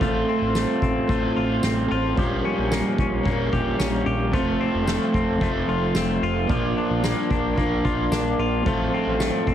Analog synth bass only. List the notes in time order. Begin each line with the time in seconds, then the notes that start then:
0.01 A1
0.41 A1
0.82 A1
1.09 A1
1.36 A1
1.64 A1
1.91 A1
2.18 A#1
2.58 A#1
2.98 A#1
3.26 A#1
3.53 A#1
3.80 A#1
4.06 A#1
4.34 F1
4.74 F1
5.14 F1
5.41 F1
5.69 F1
5.95 F1
6.22 F1
6.49 A#1
6.90 A#1
7.31 A#1
7.58 A#1
7.85 A#1
8.11 A#1
8.39 A#1
8.66 A1
9.07 A1
9.47 A1